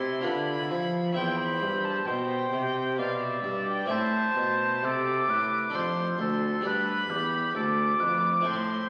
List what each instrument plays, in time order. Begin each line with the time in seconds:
Already playing: harpsichord C3 E4 G4 C5, cello C3, oboe E4, violin C6
0.21 harpsichord D4 F4 B4
0.25 harpsichord D3, cello D3, violin B5
0.71 harpsichord F3, cello F3
1.13 harpsichord C4 E4 E5, violin G5
1.17 cello E2, harpsichord E2, oboe C5
1.39 violin B5
1.62 cello G2, harpsichord G2
1.85 violin A5
2.07 cello B2, harpsichord B2, oboe C5, violin G5
2.53 cello C3, harpsichord C3
2.98 harpsichord B2, cello B2, oboe D5, violin F5
3.22 violin E5
3.44 harpsichord G2, cello G2
3.69 violin G5
3.86 cello A2, harpsichord C4 E4 E5
3.90 harpsichord A2, oboe C5, violin A5
4.36 harpsichord B2, cello B2
4.83 harpsichord C3, cello C3, oboe A4, violin D6
5.29 harpsichord A2, cello A2, oboe B4
5.70 harpsichord D4 A4 D5
5.75 harpsichord F2, cello F2, oboe C5, violin C6
6.19 harpsichord D2, cello D2, oboe A4
6.61 cello G2, harpsichord D4 G4 D5
6.65 harpsichord G2, oboe B4, violin B5
7.10 harpsichord E2, cello E2, oboe G4
7.55 harpsichord D2, cello D2, oboe A4, violin D6
8.00 harpsichord F2, cello F2, oboe B4
8.41 harpsichord C4 E4 A4
8.45 harpsichord A2, cello A2, oboe C5, violin C6